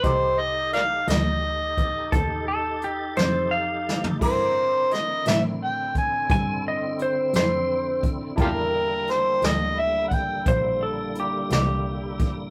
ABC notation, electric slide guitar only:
X:1
M:12/8
L:1/16
Q:3/8=58
K:Cdor
V:1 name="Electric slide guitar"
z12 A2 A2 G2 c2 f3 z | z12 _a2 e2 c2 c4 z2 | z12 c2 A2 G2 G4- G z |]